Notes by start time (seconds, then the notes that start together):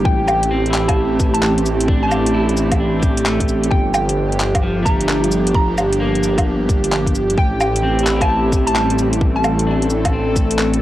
Already playing: E3 F3 G3 G4
0.05 A1 E3 A3 C4 G5, kick
0.28 G5, cabasa, low woodblock
0.43 closed hi-hat
0.51 C4
0.66 closed hi-hat
0.70 E4, clap, cabasa
0.88 A5, kick, closed hi-hat, low woodblock
1.20 kick, closed hi-hat, cabasa
1.34 A5, closed hi-hat
1.43 clap
1.58 closed hi-hat
1.66 cabasa
1.80 closed hi-hat
1.88 D4, kick
2.03 A5
2.08 G4, cabasa, low woodblock
2.26 closed hi-hat
2.34 E4
2.49 closed hi-hat
2.57 cabasa
2.72 kick, closed hi-hat, low woodblock
2.80 D4
3.00 G4, kick, closed hi-hat, cabasa
3.17 closed hi-hat
3.26 A3, clap, cabasa
3.40 kick, closed hi-hat
3.48 cabasa
3.63 closed hi-hat
3.71 G1 F3 D4 G4 G5, kick
3.94 G5, cabasa, low woodblock
4.09 closed hi-hat
4.32 closed hi-hat
4.40 clap, cabasa
4.55 kick, closed hi-hat, low woodblock
4.63 F3
4.82 A3 A#5, kick, closed hi-hat, cabasa
5.01 closed hi-hat
5.09 clap
5.24 closed hi-hat
5.32 cabasa
5.47 closed hi-hat
5.54 A#5, kick
5.78 cabasa, low woodblock
5.93 closed hi-hat
6.00 A#3
6.15 closed hi-hat
6.23 cabasa
6.38 kick, closed hi-hat, low woodblock
6.69 kick, closed hi-hat, cabasa
6.84 closed hi-hat
6.92 clap, cabasa
7.06 kick, closed hi-hat
7.15 cabasa
7.30 closed hi-hat
7.38 A1 E3 A3 C4 G5, kick
7.60 G5, cabasa, low woodblock
7.76 closed hi-hat
7.83 C4
7.99 closed hi-hat
8.03 E4, clap, cabasa
8.16 G4
8.21 A5, kick, closed hi-hat, low woodblock
8.52 kick, closed hi-hat, cabasa
8.67 A5, closed hi-hat
8.75 G3, clap
8.90 closed hi-hat
8.99 cabasa
9.13 closed hi-hat
9.21 A4, kick
9.36 A5
9.44 cabasa, low woodblock
9.59 closed hi-hat
9.67 D4
9.82 closed hi-hat
9.90 cabasa
10.05 kick, closed hi-hat, low woodblock
10.13 C4
10.36 kick, closed hi-hat, cabasa
10.51 closed hi-hat
10.59 clap, cabasa
10.74 closed hi-hat